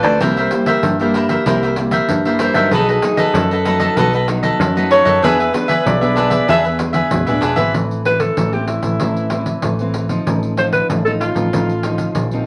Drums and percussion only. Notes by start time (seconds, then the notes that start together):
0.03 pandeiro
0.21 pandeiro
0.37 pandeiro
0.51 pandeiro
0.66 pandeiro
0.83 pandeiro
0.99 pandeiro
1.14 pandeiro
1.29 pandeiro
1.46 pandeiro
1.63 pandeiro
1.76 pandeiro
1.91 pandeiro
2.09 pandeiro
2.25 pandeiro
2.39 pandeiro
2.54 pandeiro
2.71 pandeiro
2.89 pandeiro
3.02 pandeiro
3.17 pandeiro
3.35 pandeiro
3.51 pandeiro
3.65 pandeiro
3.80 pandeiro
3.97 pandeiro
4.13 pandeiro
4.28 pandeiro
4.43 pandeiro
4.61 pandeiro
4.77 pandeiro
4.91 pandeiro
5.07 pandeiro
5.24 pandeiro
5.40 pandeiro
5.54 pandeiro
5.69 pandeiro
5.87 pandeiro
6.03 pandeiro
6.17 pandeiro
6.31 pandeiro
6.49 pandeiro
6.65 pandeiro
6.79 pandeiro
6.94 pandeiro
7.11 pandeiro
7.27 pandeiro
7.42 pandeiro
7.57 pandeiro
7.74 pandeiro
7.91 pandeiro
8.05 pandeiro
8.20 pandeiro
8.37 pandeiro
8.53 pandeiro
8.68 pandeiro
8.83 pandeiro
9.00 pandeiro
9.17 pandeiro
9.30 pandeiro
9.46 pandeiro
9.62 pandeiro
9.79 pandeiro
9.94 pandeiro
10.09 pandeiro
10.27 pandeiro
10.43 pandeiro
10.57 pandeiro
10.73 pandeiro
10.90 pandeiro
11.06 pandeiro
11.21 pandeiro
11.36 pandeiro
11.53 pandeiro
11.69 pandeiro
11.83 pandeiro
11.98 pandeiro
12.15 pandeiro
12.31 pandeiro